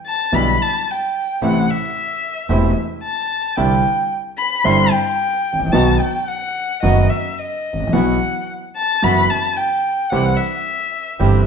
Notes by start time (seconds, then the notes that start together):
0.06 A5
0.32 B1 B2 D3 G3 B3 D4 E4 B5
0.62 A5
0.90 G5
1.41 A1 A2 C3 E3 A3 C4 E4 F#5
1.71 E5
2.48 E1 E2 C3 E3 A3 C4 E4
3.03 A5
3.56 C2 C3 D3 G3 C4 D4 E4 G5
4.38 B5
4.64 G1 G2 D3 G3 C4 D4 E4 C6
4.91 G5
5.53 G#1
5.59 A1
5.66 A#1
5.72 B1 B2 D#3 F#3 B3 D#4 F#4 A5
5.99 G5
6.28 F#5
6.83 F#1 F#2 D#3 F#3 B3 D#4 F#4 D#5
7.10 E5
7.39 D#5
7.73 G#1
7.80 A1
7.87 A#1
7.92 B1 B2 E3 F#3 B3 E4 F#4 F#5
8.76 A5
9.02 F#1 F#2 E3 F#3 B3 E4 F#4 B5
9.30 A5
9.57 G5
10.10 C2 C3 E3 G3 C4 E4 G4 F#5
10.37 E5
11.19 G1 G2 E3 G3 C4 E4 G4